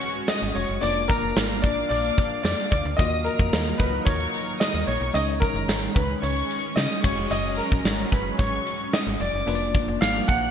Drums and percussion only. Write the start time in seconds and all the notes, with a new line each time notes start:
0.01 closed hi-hat
0.28 snare, closed hi-hat, tambourine
0.55 closed hi-hat
0.83 closed hi-hat
1.10 kick, closed hi-hat
1.36 snare, closed hi-hat, tambourine
1.64 kick, closed hi-hat
1.91 closed hi-hat
2.05 closed hi-hat
2.18 kick, closed hi-hat
2.45 snare, closed hi-hat, tambourine
2.72 kick, closed hi-hat
2.99 kick, closed hi-hat
3.26 closed hi-hat
3.39 kick
3.53 snare, closed hi-hat, tambourine
3.80 kick, closed hi-hat
4.07 kick, closed hi-hat
4.20 closed hi-hat
4.34 closed hi-hat
4.61 snare, closed hi-hat, tambourine
4.88 closed hi-hat
5.15 closed hi-hat
5.42 kick, closed hi-hat
5.56 closed hi-hat
5.69 snare, closed hi-hat, tambourine
5.96 kick, closed hi-hat
6.23 closed hi-hat
6.37 closed hi-hat
6.51 closed hi-hat
6.77 snare, closed hi-hat, tambourine
7.04 kick, crash
7.32 closed hi-hat
7.58 closed hi-hat
7.72 kick, closed hi-hat
7.85 snare, closed hi-hat, tambourine
8.12 kick, closed hi-hat
8.39 kick, closed hi-hat
8.67 closed hi-hat
8.93 snare, closed hi-hat, tambourine
9.20 closed hi-hat
9.48 closed hi-hat
9.75 kick, closed hi-hat
10.02 snare, closed hi-hat, tambourine
10.29 kick, closed hi-hat